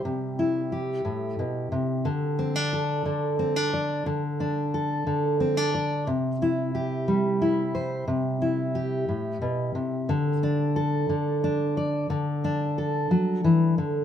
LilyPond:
\new Staff \with { instrumentName = "Steel-string acoustic guitar" } { \time 6/8 \key d \mixolydian \tempo 4. = 60 << { r8 e'8 g'2 | r8 c'16 d'16 a'4 c'16 d'16 d''8 | r8 d'8 a'4 c'16 d'16 d''8 | r8 e'8 g'4 e'8 c''8 |
r8 e'8 g'2 | r8 d'8 a'4 d'8 d''8 | r8 d'8 a'2 | } \\ { c4. a,8 b,8 c8 | d4. d4. | d4. d4. | c4. g4. |
c4. a,8 b,8 c8 | d4. d4. | d4. fis8 e8 d8 | } >> }